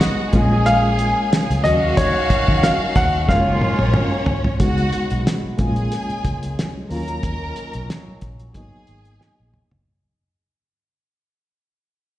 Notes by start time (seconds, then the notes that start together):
Already playing: C#3 G#3 B3 D#4 F#4 D#5 F#5
0.01 snare, closed hi-hat
0.32 A#1 F3 G#3 A#3 C#4 F4 G#4 G#5, kick, closed hi-hat
0.66 F5, snare, closed hi-hat
0.99 closed hi-hat
1.33 snare, closed hi-hat
1.50 C#2, closed hi-hat
1.63 D#2 C#3 D#3 F#3 A#3 C#4 D#4 F#4 D#5 F5, closed hi-hat
1.97 D#2 C#5, kick, closed hi-hat
2.30 muted fingered electric bass stroke, kick, closed hi-hat
2.48 D#3, kick
2.63 F5, snare, closed hi-hat
2.96 D#2 F#5, kick, closed hi-hat
3.28 F#1 C#3 F#3 G#3 A#3 C#4 F4 A#4 C#5 F5, kick, snare
3.61 high tom
3.79 A#1, high tom
3.94 mid tom
4.26 floor tom
4.44 floor tom
4.60 C#2 C#3 G#3 B3 D#4 F#4 F#5, kick, closed hi-hat
4.78 closed hi-hat
4.93 closed hi-hat
5.10 B1, closed hi-hat
5.27 snare, closed hi-hat
5.44 muted fingered electric bass stroke
5.58 A#1 G#3 A#3 C#4 F4 G#4 G#5, kick, closed hi-hat
5.76 closed hi-hat
5.92 snare, closed hi-hat
6.10 muted fingered electric bass stroke, closed hi-hat
6.25 C#2, kick, closed hi-hat
6.43 closed hi-hat
6.59 snare, closed hi-hat
6.89 D#2 D#3 F#3 A#3 C#4 F4 A#4 A#5, open hi-hat
7.08 closed hi-hat
7.23 D#2, kick, closed hi-hat
7.56 closed hi-hat
7.73 B1, closed hi-hat
7.90 snare, closed hi-hat
8.08 muted fingered electric bass stroke
8.21 A#1, kick, closed hi-hat
8.40 closed hi-hat
8.54 G#1 F#3 G#3 A#3 B3 D#4 G#4 G#5, kick, closed hi-hat
8.87 G#1, closed hi-hat
9.05 closed hi-hat
9.21 muted fingered electric bass stroke, snare
9.40 A#1
9.54 mid tom
9.71 F#1, floor tom